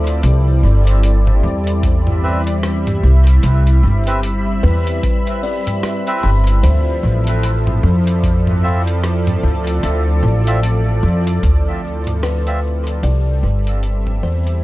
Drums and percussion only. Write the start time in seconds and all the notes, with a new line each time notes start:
0.07 closed hi-hat
0.23 closed hi-hat
0.87 closed hi-hat
1.03 closed hi-hat
1.27 mid tom
1.67 closed hi-hat
1.83 kick, closed hi-hat
2.07 mid tom
2.47 closed hi-hat
2.63 cross-stick, closed hi-hat
2.87 closed hi-hat, mid tom
3.27 closed hi-hat
3.43 closed hi-hat
3.67 closed hi-hat
4.07 closed hi-hat
4.23 closed hi-hat
4.87 closed hi-hat
5.03 kick, closed hi-hat
5.27 closed hi-hat
5.67 closed hi-hat, mid tom
5.83 cross-stick, closed hi-hat
6.07 closed hi-hat
6.47 closed hi-hat
6.63 closed hi-hat
7.27 closed hi-hat
7.43 closed hi-hat
7.67 mid tom
8.07 closed hi-hat
8.23 kick, closed hi-hat
8.47 mid tom
8.87 closed hi-hat
9.04 cross-stick, closed hi-hat
9.27 closed hi-hat, mid tom
9.67 closed hi-hat
9.83 closed hi-hat
10.47 closed hi-hat
10.63 closed hi-hat
11.27 closed hi-hat
11.43 kick, closed hi-hat
12.07 closed hi-hat, mid tom
12.23 cross-stick, closed hi-hat
12.47 closed hi-hat
12.87 closed hi-hat
13.03 closed hi-hat
13.67 closed hi-hat
13.83 closed hi-hat
14.07 mid tom
14.47 closed hi-hat